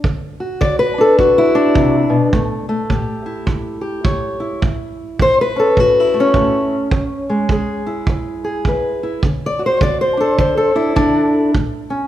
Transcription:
0.04 0.57 D3 medium
0.04 kick medium
0.40 1.00 F#4 soft
0.61 1.14 D3 medium
0.61 0.79 D5 loud
0.61 kick medium
0.79 1.37 B4 medium
0.98 1.54 D4 soft
0.98 1.19 A4 medium
1.18 1.71 D3 medium
1.18 1.95 F#4 medium
1.18 kick medium
1.38 2.14 E4 medium
1.55 2.32 D4 medium
1.75 2.09 C3 medium
1.75 kick medium
2.10 2.32 B2 medium
2.33 2.86 A2 medium
2.33 2.68 A3 soft
2.33 kick medium
2.69 4.60 A3 soft
2.90 3.43 A2 medium
2.90 3.80 G4 soft
2.90 kick medium
3.26 4.40 E4 soft
3.46 4.00 A2 medium
3.46 kick medium
3.81 4.59 G4 soft
4.04 4.58 A2 medium
4.04 4.60 C#5 soft
4.04 kick medium
4.40 5.56 E4 soft
4.62 5.15 A2 medium
4.62 kick medium
5.19 5.73 A2 medium
5.19 5.40 C5 loud
5.19 kick medium
5.41 6.00 B4 medium
5.56 6.17 C#4 soft
5.56 5.80 A4 medium
5.77 6.30 A2 medium
5.77 6.55 F#4 medium
5.77 kick medium
6.00 6.75 E4 medium
6.14 6.34 A3 soft
6.20 7.86 C#4 medium
6.34 6.88 A2 medium
6.34 6.90 A3 soft
6.34 kick medium
6.91 7.46 E2 medium
6.91 kick medium
7.30 9.22 G#3 soft
7.49 8.04 E2 medium
7.49 8.43 G#4 soft
7.49 kick medium
7.87 9.01 E4 soft
8.07 8.62 E2 medium
8.07 kick medium
8.44 9.21 G#4 soft
8.65 9.20 E2 medium
8.65 9.22 B4 soft
8.65 kick medium
9.03 9.22 E4 soft
9.23 9.77 D3 medium
9.23 kick medium
9.46 9.64 D5 medium
9.59 10.20 F#4 soft
9.66 9.82 C5 medium
9.81 10.34 D3 medium
9.81 10.01 D5 medium
9.81 kick medium
10.01 10.38 C5 medium
10.17 10.74 D4 soft
10.17 10.56 A4 medium
10.38 10.92 D3 medium
10.38 10.75 C5 medium
10.38 kick medium
10.57 11.35 A4 medium
10.75 10.95 D4 soft
10.75 11.53 E4 medium
10.96 11.51 D3 medium
10.96 11.54 D4 medium
10.96 kick medium
11.54 12.07 A2 medium
11.54 kick medium
11.90 12.07 C#4 soft

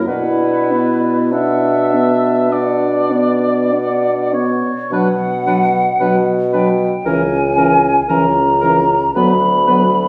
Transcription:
0.06 4.57 B2 soft
0.06 0.73 D4 soft
0.06 1.34 E4 medium
0.06 1.18 B4 soft
0.06 0.72 F#5 soft
0.70 1.35 B3 soft
0.70 1.35 D5 soft
1.32 4.34 D4 soft
1.32 1.96 D4 soft
1.32 2.54 E5 soft
1.32 1.94 F#5 soft
1.92 2.51 B3 soft
1.92 2.49 D5 soft
2.50 3.14 D4 soft
2.50 4.33 D5 soft
2.50 3.13 F#5 soft
3.11 3.74 B3 soft
3.11 3.74 D5 soft
3.72 4.35 D4 soft
3.72 4.35 F#5 soft
4.34 4.75 B3 soft
4.34 4.91 C#5 soft
4.34 4.92 D5 soft
4.91 5.87 B2 soft
4.91 5.08 F#3 soft
4.91 5.07 D4 soft
4.91 5.09 B4 soft
4.91 6.27 F#5 medium
5.46 5.63 F#3 soft
5.46 5.62 D4 soft
5.46 5.63 B4 soft
6.00 6.94 B2 soft
6.00 6.17 F#3 soft
6.00 6.17 D4 soft
6.00 6.16 B4 soft
6.53 6.70 F#3 soft
6.53 6.70 D4 soft
6.53 6.69 B4 soft
6.53 7.08 G5 medium
7.05 7.97 C#2 soft
7.05 7.23 E3 soft
7.05 7.22 C#4 soft
7.05 7.22 A#4 soft
7.05 8.11 G#5 medium
7.57 7.74 E3 soft
7.57 7.73 C#4 soft
7.57 7.73 A#4 soft
8.09 9.03 C#2 soft
8.09 8.26 E3 soft
8.09 8.26 C#4 soft
8.09 8.25 A#4 soft
8.09 9.14 A#5 medium
8.61 8.80 E3 soft
8.61 8.79 C#4 soft
8.61 8.77 A#4 soft
9.15 10.07 D2 soft
9.15 9.32 F#3 soft
9.15 9.32 B3 soft
9.15 9.31 B4 soft
9.15 10.08 B5 medium
9.66 9.85 F#3 soft
9.66 9.82 B3 soft
9.66 9.83 B4 soft

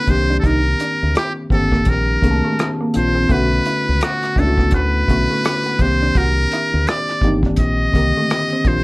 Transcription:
0.00 0.11 D3 medium
0.00 0.12 B4 medium
0.07 0.38 C2 medium
0.07 1.23 D#3 medium
0.07 1.23 A#3 medium
0.07 1.24 C4 medium
0.07 1.24 D4 medium
0.07 1.25 G4 medium
0.07 0.39 C5 medium
0.07 muted clean electric guitar stroke soft
0.07 kick medium
0.07 closed hi-hat medium
0.30 0.42 D4 medium
0.40 0.48 A4 medium
0.40 kick medium
0.40 closed hi-hat medium
0.45 0.73 C2 medium
0.45 0.61 D#4 medium
0.45 1.16 A#4 medium
0.80 0.97 D4 medium
0.80 closed hi-hat medium
1.03 1.14 D2 medium
1.15 1.33 G4 medium
1.15 muted clean electric guitar stroke soft
1.15 cross-stick medium
1.15 closed hi-hat medium
1.50 1.80 G1 medium
1.50 2.08 D#3 medium
1.50 2.08 A#3 medium
1.50 2.08 C4 medium
1.50 1.68 C4 medium
1.50 2.09 D4 medium
1.50 2.09 G4 medium
1.50 1.91 A4 medium
1.50 kick medium
1.50 closed hi-hat medium
1.72 1.84 A#3 medium
1.72 kick medium
1.72 cross-stick soft
1.85 2.16 A#1 medium
1.85 muted clean electric guitar stroke soft
1.85 kick medium
1.85 closed hi-hat medium
1.89 2.69 A#4 medium
2.21 2.40 C2 medium
2.21 2.79 D#3 medium
2.21 2.40 A3 medium
2.21 2.79 A#3 medium
2.21 2.80 C4 medium
2.21 2.80 D4 medium
2.21 2.31 G#4 medium
2.21 kick medium
2.21 closed hi-hat medium
2.31 2.84 A5 medium
2.45 2.56 A3 medium
2.59 cross-stick medium
2.59 closed hi-hat medium
2.80 2.92 A#3 medium
2.93 3.24 A#1 medium
2.93 3.22 D#3 medium
2.93 3.22 A#3 medium
2.93 3.22 C4 medium
2.93 3.23 D4 medium
2.93 3.23 F4 medium
2.93 3.33 C5 medium
2.93 muted clean electric guitar stroke soft
2.93 closed hi-hat medium
3.15 3.27 C4 medium
3.29 3.59 B1 medium
3.29 4.12 D3 medium
3.29 4.12 A3 medium
3.29 4.13 B3 medium
3.29 4.13 C#4 medium
3.29 3.47 F#4 medium
3.29 4.14 F#4 medium
3.29 4.04 B4 loud
3.29 kick medium
3.29 closed hi-hat medium
3.65 3.83 E4 medium
3.65 closed hi-hat medium
3.89 4.00 C#2 medium
4.01 4.40 F#4 medium
4.01 muted clean electric guitar stroke soft
4.01 cross-stick loud
4.01 closed hi-hat medium
4.22 cross-stick soft
4.22 closed hi-hat soft
4.36 4.73 C#2 medium
4.36 4.94 A3 medium
4.36 4.94 B3 medium
4.36 4.95 C#4 medium
4.36 4.93 D4 medium
4.36 4.54 D4 medium
4.36 4.45 E4 medium
4.36 4.73 A4 medium
4.36 kick medium
4.36 closed hi-hat medium
4.46 4.98 F#4 medium
4.57 4.70 B3 medium
4.57 kick medium
4.57 cross-stick soft
4.71 5.02 D2 medium
4.71 muted clean electric guitar stroke soft
4.71 kick medium
4.71 closed hi-hat medium
4.75 5.83 B4 medium
5.07 5.26 B1 medium
5.07 5.79 D3 medium
5.07 5.79 A3 soft
5.07 5.26 A3 medium
5.07 5.80 B3 medium
5.07 5.80 C#4 soft
5.07 5.80 F#4 medium
5.07 kick medium
5.07 closed hi-hat medium
5.30 5.42 A3 medium
5.45 cross-stick medium
5.45 closed hi-hat medium
5.63 5.77 B3 medium
5.63 closed hi-hat soft
5.79 6.09 C2 medium
5.79 6.94 D#3 medium
5.79 6.95 A#3 medium
5.79 6.95 C4 medium
5.79 6.96 D4 medium
5.79 6.96 G4 medium
5.79 6.19 C5 medium
5.79 muted clean electric guitar stroke soft
5.79 kick medium
5.79 closed hi-hat medium
6.02 6.13 D4 medium
6.15 6.45 C2 medium
6.15 6.33 F#4 medium
6.15 6.90 A#4 medium
6.15 kick medium
6.15 closed hi-hat medium
6.51 6.69 E4 medium
6.51 cross-stick soft
6.51 closed hi-hat medium
6.74 6.85 D2 medium
6.87 7.33 D5 medium
6.87 muted clean electric guitar stroke soft
6.87 cross-stick medium
6.87 closed hi-hat medium
7.09 cross-stick soft
7.09 closed hi-hat soft
7.21 7.51 G1 medium
7.21 7.79 D#3 medium
7.21 7.79 A#3 medium
7.21 7.79 C4 medium
7.21 7.80 D4 medium
7.21 7.40 D#4 medium
7.21 7.80 G4 medium
7.21 kick medium
7.21 closed hi-hat soft
7.43 7.57 D4 medium
7.43 kick medium
7.56 7.88 A#1 medium
7.56 8.69 D#5 medium
7.56 kick medium
7.56 closed hi-hat medium
7.61 muted clean electric guitar stroke soft
7.92 8.11 C2 medium
7.92 8.51 D3 soft
7.92 8.50 D#3 medium
7.92 8.50 A#3 soft
7.92 8.12 A#3 medium
7.92 8.51 C4 soft
7.92 8.52 G4 medium
7.92 kick medium
7.92 closed hi-hat medium
8.17 8.28 A3 medium
8.30 cross-stick medium
8.30 closed hi-hat medium
8.49 8.64 C4 medium
8.49 closed hi-hat soft
8.64 8.84 A#1 medium
8.64 8.84 D#3 medium
8.64 8.84 A#3 medium
8.64 8.84 C4 medium
8.64 8.84 D4 medium
8.64 8.84 F4 medium
8.64 8.84 C5 medium
8.64 muted clean electric guitar stroke soft
8.64 kick medium
8.64 closed hi-hat medium

